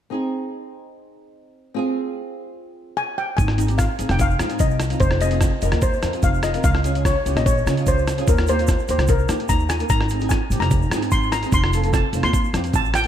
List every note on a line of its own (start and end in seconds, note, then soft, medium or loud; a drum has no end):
0.10 1.71 C4 medium
0.10 1.71 D#4 medium
0.10 1.72 G#4 medium
1.74 3.35 C4 medium
1.74 3.35 F4 medium
1.74 3.36 G#4 medium
2.97 3.06 G#5 medium
3.18 3.37 G5 medium
3.37 3.86 G#1 loud
3.37 3.80 G#5 medium
3.37 kick loud
3.37 closed hi-hat medium
3.37 shaker medium
3.48 cross-stick medium
3.57 3.64 C4 medium
3.57 3.65 D#4 medium
3.57 3.65 G#4 medium
3.57 closed hi-hat medium
3.57 shaker medium
3.67 3.87 C4 medium
3.67 3.87 D#4 medium
3.67 3.87 G4 medium
3.67 closed hi-hat medium
3.67 shaker soft
3.78 4.07 F5 medium
3.78 kick medium
3.78 cross-stick medium
3.78 closed hi-hat medium
3.78 shaker medium
3.98 4.08 G#1 medium
3.98 4.24 C4 medium
3.98 4.24 D#4 medium
3.98 4.24 G#4 medium
3.98 closed hi-hat medium
3.98 shaker medium
4.09 4.33 F1 medium
4.09 4.21 G5 medium
4.09 cross-stick medium
4.09 closed hi-hat soft
4.09 shaker soft
4.19 4.63 F5 medium
4.19 kick medium
4.19 closed hi-hat soft
4.19 shaker medium
4.30 shaker soft
4.39 4.56 G#2 medium
4.39 4.46 C4 medium
4.39 4.46 D#4 medium
4.39 4.46 G#4 medium
4.39 cross-stick medium
4.39 closed hi-hat medium
4.39 shaker medium
4.49 4.74 C4 medium
4.49 4.75 D#4 medium
4.49 4.75 G#4 medium
4.49 closed hi-hat medium
4.49 shaker soft
4.59 4.92 C2 medium
4.59 5.03 D#5 medium
4.59 kick medium
4.59 closed hi-hat medium
4.59 shaker medium
4.70 shaker soft
4.80 cross-stick medium
4.80 closed hi-hat medium
4.80 shaker medium
4.90 5.01 C4 medium
4.90 5.01 D#4 medium
4.90 5.01 F4 medium
4.90 closed hi-hat medium
4.90 shaker soft
5.00 5.48 F1 medium
5.00 5.22 C5 medium
5.00 kick loud
5.00 closed hi-hat medium
5.00 shaker medium
5.11 cross-stick medium
5.21 5.28 C4 medium
5.21 5.28 F4 medium
5.21 5.28 G#4 medium
5.21 5.61 D#5 medium
5.21 closed hi-hat medium
5.21 shaker medium
5.31 5.50 C4 medium
5.31 5.50 F4 medium
5.31 5.51 G#4 medium
5.31 closed hi-hat medium
5.31 shaker soft
5.41 kick medium
5.41 cross-stick medium
5.41 closed hi-hat medium
5.41 shaker medium
5.62 5.71 F1 medium
5.62 5.87 C4 medium
5.62 5.87 F4 medium
5.62 5.87 A#4 medium
5.62 5.84 D#5 medium
5.62 closed hi-hat medium
5.62 shaker medium
5.72 5.97 D#2 medium
5.72 cross-stick medium
5.72 closed hi-hat soft
5.82 6.25 C5 medium
5.82 kick medium
5.82 closed hi-hat soft
5.82 shaker medium
5.93 shaker soft
6.02 6.19 F2 medium
6.02 6.09 C4 medium
6.02 6.10 F4 medium
6.02 6.10 A#4 medium
6.02 cross-stick medium
6.02 closed hi-hat medium
6.02 shaker medium
6.13 6.38 C4 medium
6.13 6.38 F4 medium
6.13 6.38 G#4 medium
6.13 closed hi-hat medium
6.13 shaker soft
6.22 6.55 F1 medium
6.22 6.43 F5 medium
6.22 kick medium
6.22 closed hi-hat soft
6.22 shaker medium
6.34 shaker soft
6.43 6.65 D#5 medium
6.43 cross-stick medium
6.43 closed hi-hat medium
6.43 shaker medium
6.54 6.64 C4 medium
6.54 6.64 F4 medium
6.54 6.65 A#4 medium
6.54 closed hi-hat medium
6.54 shaker soft
6.64 7.12 C#2 loud
6.64 7.06 F5 medium
6.64 kick loud
6.64 closed hi-hat medium
6.64 shaker medium
6.75 cross-stick medium
6.84 6.90 C#4 medium
6.84 6.91 F4 medium
6.84 6.91 G#4 medium
6.84 closed hi-hat medium
6.84 shaker medium
6.94 7.13 C#4 medium
6.94 7.13 F4 medium
6.94 7.13 G#4 medium
6.94 closed hi-hat medium
6.94 shaker soft
7.05 7.37 C#5 medium
7.05 kick medium
7.05 cross-stick medium
7.05 closed hi-hat medium
7.05 shaker medium
7.25 7.34 C#2 medium
7.25 7.50 C#4 medium
7.25 7.50 F4 medium
7.25 7.50 G4 medium
7.25 closed hi-hat medium
7.25 shaker medium
7.36 7.59 A#1 medium
7.36 7.46 D#5 medium
7.36 cross-stick medium
7.36 closed hi-hat medium
7.36 shaker soft
7.46 7.88 C#5 medium
7.46 kick medium
7.46 closed hi-hat medium
7.46 shaker medium
7.58 shaker soft
7.66 7.82 C#3 medium
7.66 7.73 C#4 medium
7.66 7.73 F4 medium
7.66 7.73 G#4 medium
7.66 cross-stick medium
7.66 closed hi-hat medium
7.66 shaker medium
7.77 8.01 C#4 medium
7.77 8.02 F4 medium
7.77 8.02 G#4 medium
7.77 closed hi-hat medium
7.77 shaker soft
7.86 8.18 C#2 medium
7.86 8.25 C5 medium
7.86 kick medium
7.86 closed hi-hat medium
7.86 shaker medium
7.98 shaker soft
8.08 cross-stick medium
8.08 closed hi-hat medium
8.08 shaker medium
8.17 8.27 C#4 medium
8.17 8.28 F4 medium
8.17 8.28 G#4 medium
8.17 closed hi-hat medium
8.17 shaker soft
8.28 8.75 D#2 medium
8.28 8.49 A#4 medium
8.28 kick loud
8.28 closed hi-hat medium
8.28 shaker medium
8.37 cross-stick medium
8.37 shaker soft
8.47 8.54 A#3 medium
8.47 8.54 D#4 medium
8.47 8.54 G4 medium
8.47 8.86 C5 medium
8.47 closed hi-hat medium
8.47 shaker medium
8.58 8.76 A#3 medium
8.58 8.77 D#4 medium
8.58 8.77 F4 medium
8.58 closed hi-hat medium
8.58 shaker soft
8.67 kick medium
8.67 cross-stick medium
8.67 closed hi-hat medium
8.67 shaker medium
8.79 shaker soft
8.88 8.97 D#2 medium
8.88 9.13 A#3 medium
8.88 9.13 D#4 medium
8.88 9.13 G4 medium
8.88 8.99 C5 medium
8.88 closed hi-hat medium
8.88 shaker medium
8.98 9.22 C2 medium
8.98 cross-stick medium
8.98 closed hi-hat soft
8.98 shaker soft
9.08 9.47 A#4 medium
9.08 kick medium
9.08 closed hi-hat soft
9.08 shaker medium
9.19 shaker soft
9.29 9.45 D#3 medium
9.29 9.35 A#3 medium
9.29 9.35 D#4 medium
9.29 9.35 G4 medium
9.29 cross-stick medium
9.29 closed hi-hat medium
9.29 shaker medium
9.40 9.64 A#3 medium
9.40 9.64 D#4 soft
9.40 9.65 G4 medium
9.40 closed hi-hat soft
9.49 9.81 D#2 medium
9.49 9.70 A#5 medium
9.49 kick medium
9.49 closed hi-hat medium
9.49 shaker medium
9.59 shaker soft
9.69 9.90 G#5 medium
9.69 cross-stick medium
9.69 closed hi-hat medium
9.69 shaker medium
9.79 9.89 A#3 medium
9.79 9.90 D#4 medium
9.79 9.90 A#4 medium
9.79 closed hi-hat medium
9.79 shaker soft
9.89 10.37 G#1 medium
9.89 10.32 A#5 medium
9.89 kick medium
9.89 closed hi-hat medium
9.89 shaker medium
10.01 cross-stick medium
10.09 10.17 C4 medium
10.09 10.17 D#4 medium
10.09 10.17 G#4 medium
10.09 closed hi-hat medium
10.09 shaker medium
10.20 10.39 C4 medium
10.20 10.39 D#4 medium
10.20 10.39 G#4 medium
10.20 closed hi-hat medium
10.20 shaker soft
10.29 10.62 G#5 medium
10.29 kick medium
10.29 cross-stick medium
10.29 closed hi-hat medium
10.29 shaker medium
10.50 10.59 G#1 medium
10.50 10.76 C4 medium
10.50 10.76 D#4 medium
10.50 10.76 G4 medium
10.50 closed hi-hat medium
10.50 shaker medium
10.60 10.84 F1 medium
10.60 10.80 A#5 medium
10.60 cross-stick medium
10.60 closed hi-hat soft
10.60 shaker soft
10.71 kick medium
10.71 closed hi-hat soft
10.71 shaker medium
10.82 shaker soft
10.90 11.07 G#2 medium
10.90 10.98 C4 medium
10.90 10.99 D#4 medium
10.90 10.99 G#4 medium
10.90 cross-stick medium
10.90 closed hi-hat medium
10.90 shaker medium
11.02 11.26 C4 medium
11.02 11.27 D#4 medium
11.02 11.27 G#4 medium
11.02 closed hi-hat medium
11.02 shaker soft
11.11 11.44 G#1 medium
11.11 11.33 C6 medium
11.11 kick medium
11.11 closed hi-hat medium
11.11 shaker medium
11.23 shaker soft
11.32 11.53 A#5 medium
11.32 cross-stick medium
11.32 closed hi-hat medium
11.32 shaker medium
11.43 11.53 C4 medium
11.43 11.53 D#4 medium
11.43 11.53 G#4 medium
11.43 closed hi-hat medium
11.43 shaker soft
11.52 12.00 F1 loud
11.52 11.91 C6 loud
11.52 kick loud
11.52 closed hi-hat medium
11.52 shaker medium
11.64 cross-stick medium
11.73 11.79 C4 medium
11.73 11.79 F4 medium
11.73 11.80 A4 medium
11.73 closed hi-hat medium
11.73 shaker medium
11.84 12.02 C4 medium
11.84 12.02 F4 medium
11.84 12.02 A4 medium
11.84 closed hi-hat medium
11.84 shaker soft
11.93 12.25 A5 medium
11.93 kick medium
11.93 cross-stick medium
11.93 closed hi-hat medium
11.93 shaker medium
12.13 12.21 F1 medium
12.13 12.38 C4 medium
12.13 12.38 F4 medium
12.13 12.38 C5 medium
12.13 closed hi-hat medium
12.13 shaker medium
12.23 12.47 D#2 medium
12.23 12.43 C6 medium
12.23 cross-stick medium
12.23 closed hi-hat soft
12.23 shaker soft
12.33 kick medium
12.33 closed hi-hat medium
12.33 shaker medium
12.44 shaker soft
12.53 12.70 F2 medium
12.53 12.61 C4 medium
12.53 12.61 F4 medium
12.53 12.61 G4 medium
12.53 cross-stick medium
12.53 closed hi-hat medium
12.53 shaker medium
12.64 12.89 C4 medium
12.64 12.89 F4 medium
12.64 12.90 C5 medium
12.64 closed hi-hat medium
12.64 shaker soft
12.73 13.06 A1 medium
12.73 12.84 A5 medium
12.73 kick medium
12.73 closed hi-hat medium
12.73 shaker medium
12.85 shaker soft
12.94 13.07 G5 medium
12.94 cross-stick medium
12.94 closed hi-hat medium
12.94 shaker medium
13.04 closed hi-hat medium